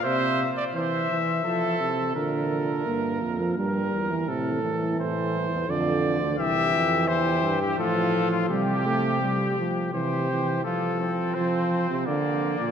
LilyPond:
<<
  \new Staff \with { instrumentName = "Trumpet" } { \time 3/4 \key bes \major \tempo 4 = 85 e''8. r16 e''2 | r2. | r2. | \key f \major e''4 c''8. g'16 a'8. f'16 |
g'2 c''4 | a'4 c''4 d''4 | }
  \new Staff \with { instrumentName = "Trumpet" } { \time 3/4 \key bes \major c''8. d''16 c''8. r16 a'4 | bes'2 bes'4 | a'4 c''4 d''4 | \key f \major g'4 g'4 f'4 |
g'4. r8 g'4 | f'8 c'4. bes4 | }
  \new Staff \with { instrumentName = "Euphonium" } { \clef bass \time 3/4 \key bes \major c8. r16 e8 e8 f8 c8 | d4 bes8. f16 g8. e16 | c8 e4. d4 | \key f \major e2 f4 |
g8 a8 g8 f8 e8 e8 | f4 f8. c16 d8. bes,16 | }
  \new Staff \with { instrumentName = "Bass trombone" } { \clef bass \time 3/4 \key bes \major r2. | bes,4 g,8 f,8 g,8 e,8 | a,4 a,8. e,16 f,8. d,16 | \key f \major c,8 f,8 e,8 g,8 a,4 |
c4. r8 c4 | r2. | }
>>